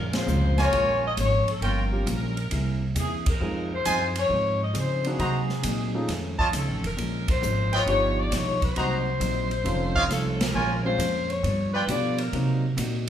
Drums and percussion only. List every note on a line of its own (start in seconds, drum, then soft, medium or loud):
0.13 snare medium
0.13 ride medium
0.28 hi-hat pedal medium
0.58 snare medium
0.58 ride soft
0.73 ride medium
1.17 hi-hat pedal medium
1.17 ride medium
1.48 ride soft
1.62 ride medium
2.07 hi-hat pedal medium
2.07 ride medium
2.37 ride soft
2.51 ride medium
2.96 hi-hat pedal medium
2.96 ride medium
3.26 kick medium
3.26 ride medium
3.85 hi-hat pedal medium
3.85 ride medium
4.16 ride medium
4.75 hi-hat pedal medium
4.75 ride medium
5.04 ride soft
5.19 ride medium
5.49 snare soft
5.63 hi-hat pedal medium
5.63 ride medium
6.09 snare soft
6.09 ride medium
6.39 kick medium
6.53 hi-hat pedal medium
6.53 ride medium
6.84 ride medium
6.98 ride medium
7.28 kick medium
7.28 ride medium
7.43 hi-hat pedal medium
7.73 ride soft
7.87 ride medium
8.32 snare soft
8.32 hi-hat pedal medium
8.32 ride medium
8.62 kick medium
8.62 ride soft
8.76 ride medium
9.21 hi-hat pedal medium
9.21 ride medium
9.51 ride soft
9.66 ride medium
9.96 kick medium
10.11 snare soft
10.11 hi-hat pedal medium
10.11 ride medium
10.41 snare medium
10.41 ride medium
11.00 hi-hat pedal medium
11.00 ride medium
11.30 ride soft
11.44 ride medium
11.88 hi-hat pedal medium
11.88 ride medium
12.18 ride medium
12.33 ride medium
12.78 hi-hat pedal medium
12.78 ride medium